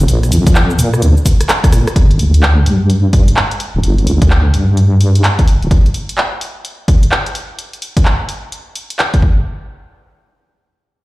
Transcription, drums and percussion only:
0.08 closed hi-hat, shaker
0.23 cross-stick, closed hi-hat, shaker
0.32 open hi-hat, shaker
0.46 kick, closed hi-hat, shaker
0.55 clap, shaker
0.70 shaker
0.79 open hi-hat, shaker
0.94 cross-stick, shaker
1.02 closed hi-hat, shaker
1.17 shaker
1.25 kick, open hi-hat, shaker
1.41 cross-stick, closed hi-hat, shaker
1.49 cross-stick, clap, open hi-hat, shaker
1.64 kick, cross-stick, closed hi-hat, shaker
1.73 cross-stick, open hi-hat, shaker
1.87 cross-stick, closed hi-hat, shaker
1.96 kick, closed hi-hat
2.11 closed hi-hat
2.19 open hi-hat
2.34 closed hi-hat
2.43 clap
2.66 open hi-hat
2.90 closed hi-hat
3.13 kick, open hi-hat
3.28 closed hi-hat
3.37 clap
3.51 closed hi-hat
3.60 open hi-hat
3.83 closed hi-hat
3.98 closed hi-hat
4.07 open hi-hat
4.22 kick, closed hi-hat
4.30 clap
4.54 open hi-hat
4.77 closed hi-hat
5.01 open hi-hat
5.15 closed hi-hat
5.24 clap, open hi-hat
5.39 kick, closed hi-hat
5.48 open hi-hat
5.62 closed hi-hat
5.71 kick, closed hi-hat
5.86 closed hi-hat
5.94 open hi-hat
6.09 closed hi-hat
6.18 clap
6.41 open hi-hat
6.65 closed hi-hat
6.88 kick, open hi-hat
7.03 closed hi-hat
7.12 clap
7.26 closed hi-hat
7.35 open hi-hat
7.59 closed hi-hat
7.73 closed hi-hat
7.82 open hi-hat
7.97 kick, closed hi-hat
8.05 clap
8.29 open hi-hat
8.52 closed hi-hat
8.76 open hi-hat
8.90 closed hi-hat
8.99 clap, open hi-hat
9.14 kick, closed hi-hat
9.22 kick

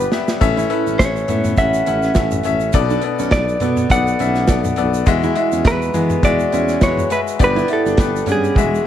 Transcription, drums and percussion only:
0.00 shaker
0.12 snare, shaker
0.28 snare, shaker
0.41 kick, splash, shaker
0.59 shaker
0.70 closed hi-hat
0.87 shaker
0.99 kick, snare, closed hi-hat, shaker
1.16 shaker
1.28 closed hi-hat, floor tom, shaker
1.44 floor tom, shaker
1.57 kick, closed hi-hat, shaker
1.74 shaker
1.86 closed hi-hat, shaker
2.02 snare, shaker
2.15 kick, snare, closed hi-hat, shaker
2.31 floor tom, shaker
2.43 closed hi-hat, shaker
2.60 shaker
2.73 kick, closed hi-hat, shaker
2.90 shaker
3.02 closed hi-hat
3.19 shaker
3.31 kick, snare, closed hi-hat, shaker
3.48 shaker
3.60 closed hi-hat, floor tom, shaker
3.77 floor tom, shaker
3.90 kick, closed hi-hat, shaker
4.07 shaker
4.19 closed hi-hat, shaker
4.35 snare, closed hi-hat, shaker
4.47 kick, snare, closed hi-hat, shaker
4.64 floor tom, shaker
4.76 closed hi-hat, shaker
4.94 closed hi-hat, shaker
5.06 kick, closed hi-hat, shaker
5.23 shaker
5.36 closed hi-hat
5.52 shaker
5.65 kick, snare, closed hi-hat, shaker
5.82 shaker
5.94 closed hi-hat, floor tom, shaker
6.10 floor tom, shaker
6.23 kick, closed hi-hat, shaker
6.40 shaker
6.52 closed hi-hat, shaker
6.68 snare, shaker
6.81 kick, snare, closed hi-hat, shaker
6.97 floor tom, shaker
7.10 closed hi-hat, shaker
7.28 closed hi-hat, shaker
7.39 kick, closed hi-hat, shaker
7.58 shaker
7.68 closed hi-hat
7.86 shaker
7.97 kick, snare, closed hi-hat, shaker
8.16 shaker
8.26 closed hi-hat, floor tom, shaker
8.44 shaker
8.55 kick, high tom, shaker
8.75 shaker

